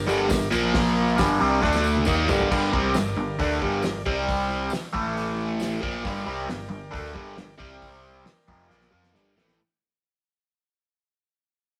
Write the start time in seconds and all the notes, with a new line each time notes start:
Already playing: D4 G4 A#4
0.07 G1 G2 D3 G3, tambourine
0.19 tambourine
0.29 G1 G2 D3, kick, snare, open hi-hat, tambourine
0.51 A#1 A#2 F3 A#3 F4 A#4, tambourine
0.65 tambourine
0.74 kick, snare, open hi-hat, tambourine
0.87 tambourine
1.08 tambourine
1.17 G1 G2 D3 G3 D4 G4 A#4, kick, snare, open hi-hat, tambourine
1.40 C2 C3 G3 C4, tambourine
1.62 D2 D3 A3 D4 A4 D5, kick, snare, tambourine
1.73 snare, tambourine
1.84 tambourine
1.94 high tom, tambourine
2.04 D#2 D#3 A#3 D#4 G4 A#4 D5, kick, mid tom, tambourine
2.28 G1 G2 D3 G3, floor tom, tambourine
2.40 floor tom, tambourine
2.50 G1 G2 D3 G3 G4 A#4 D5, kick, crash
2.73 C2 C3 G3 C4, kick
2.94 G1 G2 D3, snare, open hi-hat, tambourine
3.16 G1 G2 D3
3.39 D2 D3 A3 D4, kick, open hi-hat
3.62 G1 G2 D3 G3, kick
3.83 G1 G2 D3, snare, open hi-hat, tambourine
4.06 C2 C3 G3 C4 G4 C5 G5, kick
4.29 kick, open hi-hat
4.70 muted overdriven electric guitar stroke, snare, open hi-hat, tambourine
4.93 A1 A2 E3 A3 A4 E5 A5, kick
5.17 open hi-hat
5.35 A#5
5.44 A5
5.59 G5, snare, open hi-hat, tambourine
5.81 A#1 A#2 F3 A#3 A#4 D5 G5, kick
5.89 F5
6.04 G1 G2 D3 G3, kick, open hi-hat
6.26 C2 C3 G3 C4
6.48 G2 D3, snare, open hi-hat
6.69 G1 G2 D3
6.91 D2 D3 A3 D4, kick
6.95 open hi-hat
7.13 G1 G2 D3 G3, kick
7.36 G1 G2 D3, snare, open hi-hat
7.58 C2 C3 G3 C4 G4 C5 G5, kick
7.82 kick, open hi-hat
8.23 A#4 D5 G5, muted overdriven electric guitar stroke, snare, open hi-hat
8.48 F1 F2 C3 F3, kick
8.69 A#1 A#2 F3 A#3, snare
8.81 snare
8.91 F2 F3 C4 F4
9.04 snare
9.13 G2 D3 G3, snare
9.35 A1 A2 E3 A3, snare
9.48 snare